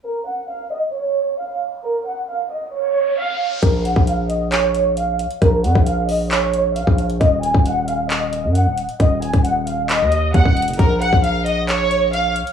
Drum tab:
HH |--------------------------------|--------------------------------|x---x---x---x---x---x---x---x-x-|x---x---x---o---x---x---x---x-x-|
CP |--------------------------------|--------------------------------|----------------x---------------|----------------x---------------|
BD |--------------------------------|--------------------------------|o-----o-------------------------|o-----o-------------------o-----|

HH |x---x---x---x---x---x---x---x-x-|x---x-x-x---x---x---x---x---xxxx|x---x---x---x---x---x---x---x-x-|
CP |----------------x---------------|----------------x---------------|----------------x---------------|
BD |o-----o-------------------------|o-----o-----------------o-o-----|o-----o-------------------------|